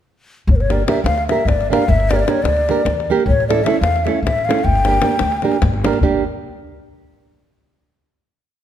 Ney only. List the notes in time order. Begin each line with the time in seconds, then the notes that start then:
0.51 C#5
0.56 A#4
0.61 C#5
0.72 D5
0.88 E5
1.05 F5
1.28 E5
1.48 D5
1.72 F5
1.89 E5
2.10 D5
2.16 C#5 D5
2.30 C#5
2.43 D5
3.28 C#5
3.48 D5
3.64 E5
3.81 F5
4.04 E5
4.23 E5
4.45 F5
4.64 G5